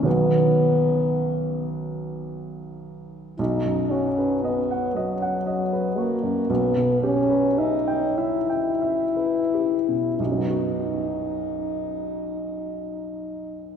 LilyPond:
<<
  \new Staff \with { instrumentName = "Grand piano" } { \time 6/8 \key b \major \tempo 4. = 36 <b,, dis fis b>2. | b,,16 fis,16 fis'16 b'16 dis''16 fis''16 dis''16 fis''16 dis''16 b'16 fis'16 fis,16 | b,,16 b,16 g'16 b'16 e''16 g''16 e''16 g''16 e''16 b'16 g'16 b,16 | <b,, fis, fis b dis' fis'>2. | }
  \new Staff \with { instrumentName = "French horn" } { \time 6/8 \key b \major b4. r4. | dis'8 cis'8 b8 fis4 ais8 | b8 cis'8 dis'8 e'4. | dis'2. | }
>>